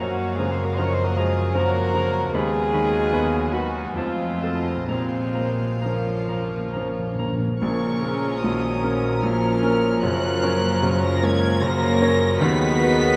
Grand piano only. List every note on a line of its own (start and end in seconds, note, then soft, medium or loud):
0.01 2.31 F#2 medium
0.39 1.01 C#3 medium
0.78 1.13 F3 soft
0.78 1.13 C#4 soft
0.78 1.13 A#4 medium
1.17 1.53 F3 soft
1.55 1.90 F3 medium
1.55 1.91 C#4 medium
1.55 1.91 A#4 medium
1.94 2.34 C#3 medium
2.35 3.93 D#2 medium
2.74 3.37 D#3 medium
3.13 3.50 F#3 soft
3.13 3.50 B3 medium
3.13 3.50 B4 medium
3.54 3.97 F#3 soft
3.96 4.86 F2 medium
4.43 4.85 C4 soft
4.43 4.85 A4 soft
4.89 7.59 A#2 medium
5.37 6.11 A#3 soft
5.85 6.26 F3 soft
5.85 6.26 C#4 soft
5.85 6.27 A#4 soft
6.30 6.74 F3 soft
6.76 7.16 F3 soft
6.76 7.17 C#4 soft
6.76 7.17 A#4 soft
7.19 7.63 A#3 soft
7.62 8.02 A#1 medium
7.62 8.02 A#2 medium
8.03 8.40 A#3 soft
8.03 8.40 C#4 soft
8.03 8.40 A#4 medium
8.44 8.82 A#1 medium
8.44 8.82 A#2 medium
8.83 9.19 A#3 medium
8.83 9.20 C#4 medium
8.83 9.20 A#4 medium
9.23 9.62 A#1 medium
9.23 9.62 A#2 medium
9.63 10.00 A#3 medium
9.63 10.00 C#4 medium
9.63 10.00 A#4 medium
10.03 10.43 F#1 medium
10.03 10.42 F#2 medium
10.43 10.80 A#3 medium
10.43 10.80 C#4 medium
10.43 10.80 C#5 medium
10.81 11.22 F#1 medium
10.81 11.22 F#2 medium
11.23 11.59 A#3 medium
11.23 11.59 C#4 medium
11.23 11.59 C#5 medium
11.62 12.00 F#1 medium
11.62 12.00 F#2 medium
12.00 12.36 A#3 medium
12.00 12.37 C#4 medium
12.00 12.37 C#5 medium
12.40 12.80 D#2 loud
12.40 12.79 D#3 medium
12.81 13.16 B3 medium
12.81 13.16 F#4 medium
12.81 13.16 B4 medium